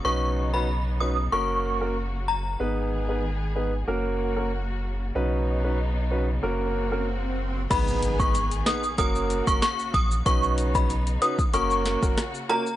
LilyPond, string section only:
\new Staff \with { instrumentName = "String section" } { \time 4/4 \key fis \mixolydian \tempo 4 = 94 << { <b dis'>2 <ais fis'>2 | <b gis'>2 <ais fis'>2 | <b dis'>2 <ais fis'>2 | <b gis'>2 <ais fis'>2 |
<b dis'>2 <ais fis'>2 | } \\ { cis1 | dis2 cis2~ | cis1 | dis2 cis2 |
cis2 cis2 | } >> }